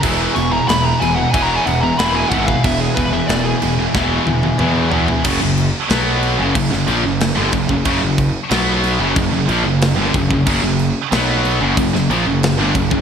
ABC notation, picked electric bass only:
X:1
M:4/4
L:1/16
Q:1/4=92
K:none
V:1 name="Picked electric bass" clef=bass
E,,,2 E,,,2 E,,,2 E,,,2 E,,,2 E,,,2 E,,,2 ^G,,,2 | E,,,2 E,,,2 E,,,2 E,,,2 E,,,2 E,,,2 E,,4 | ^F,,, F,,,2 z B,,,3 F,,, F,,, F,,, ^A,,, F,,,2 G,,, F,,, F,,, | ^F,,, F,,,2 z B,,,3 F,,, F,,, F,,, ^A,,, F,,,2 G,,, F,,, F,,, |
^F,,, F,,,2 z B,,,3 F,,, F,,, F,,, ^A,,, F,,,2 G,,, F,,, F,,, |]